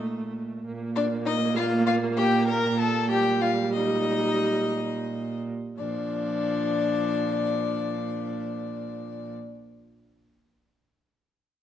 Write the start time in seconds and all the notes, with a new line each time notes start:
Already playing: A#2 A3 D#4 D#5
0.66 A#2 A#3
0.96 D4 D5
1.25 D#4 D#5
1.56 F4 F5
1.86 F4 F5
2.16 G4 G5
2.47 A#4 A#5
2.78 A4 A5
3.10 G3 G4 G5
3.42 F4 F5
3.73 D#4 D#5
5.77 A#2 F3 D4 D5